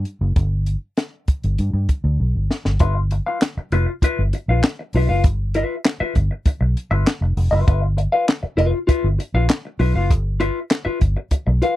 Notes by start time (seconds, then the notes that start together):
0.05 closed hi-hat
0.21 F#1
0.36 G1, kick, closed hi-hat
0.66 closed hi-hat
0.97 snare, closed hi-hat
1.28 muted fingered electric bass stroke, kick, closed hi-hat
1.44 G1, closed hi-hat
1.58 G2, closed hi-hat
1.73 G2
1.89 kick, closed hi-hat
2.04 D2
2.20 B1
2.35 G1
2.51 snare
2.65 G1, snare
2.79 G1 F4 B4 E5, kick, closed hi-hat
2.97 muted clean electric guitar stroke
3.11 muted clean electric guitar stroke, closed hi-hat
3.26 F4 B4 F5
3.41 muted clean electric guitar stroke, snare, clap, closed hi-hat
3.57 muted fingered electric bass stroke, muted clean electric guitar stroke
3.72 F1 F4 B4 E5, closed hi-hat
3.88 muted clean electric guitar stroke
4.02 F4 B4 E5, muted fingered electric bass stroke, kick, closed hi-hat
4.19 G1
4.33 muted clean electric guitar stroke, closed hi-hat
4.48 A#1 F4 B4 F5
4.63 muted clean electric guitar stroke, snare, clap, closed hi-hat
4.79 muted clean electric guitar stroke
4.93 B1 F4 B4 E5, open hi-hat
5.09 F#1 F4 B4 F5
5.24 G1, kick, closed hi-hat
5.54 F4 B4 E5, closed hi-hat
5.85 muted clean electric guitar stroke, snare, clap, closed hi-hat
6.00 F4 B4 E5, muted fingered electric bass stroke
6.15 G1, muted clean electric guitar stroke, kick, closed hi-hat
6.31 muted clean electric guitar stroke
6.46 muted fingered electric bass stroke, muted clean electric guitar stroke, kick, closed hi-hat
6.61 B1, muted clean electric guitar stroke
6.77 closed hi-hat
6.91 G1 F4 B4 E5
7.07 muted clean electric guitar stroke, snare, clap, closed hi-hat
7.21 F1, muted clean electric guitar stroke
7.37 F1, open hi-hat
7.51 F#1 F4 B4 E5
7.67 G1 F4 B4 E5, kick, closed hi-hat
7.83 muted clean electric guitar stroke
7.97 muted clean electric guitar stroke, closed hi-hat
8.12 F4 B4 F5
8.28 muted clean electric guitar stroke, snare, clap, closed hi-hat
8.43 muted clean electric guitar stroke, muted fingered electric bass stroke
8.57 F1 F4 B4 E5, closed hi-hat
8.73 muted clean electric guitar stroke
8.87 F4 B4 E5, muted fingered electric bass stroke, kick, closed hi-hat
9.04 G1
9.18 muted clean electric guitar stroke, closed hi-hat
9.34 A#1 F4 B4 F5
9.49 muted clean electric guitar stroke, snare, clap, closed hi-hat
9.65 muted clean electric guitar stroke
9.79 B1 F4 B4 E5, open hi-hat
9.95 F#1 F4 B4 F5
10.10 G1, kick, closed hi-hat
10.40 F4 B4 E5, closed hi-hat
10.70 muted clean electric guitar stroke, snare, clap, closed hi-hat
10.85 F4 B4 E5, muted fingered electric bass stroke
11.01 G1, muted clean electric guitar stroke, kick, closed hi-hat
11.17 muted clean electric guitar stroke
11.31 muted fingered electric bass stroke, muted clean electric guitar stroke, kick, closed hi-hat
11.47 B1, muted clean electric guitar stroke
11.62 F4 B4 F5, closed hi-hat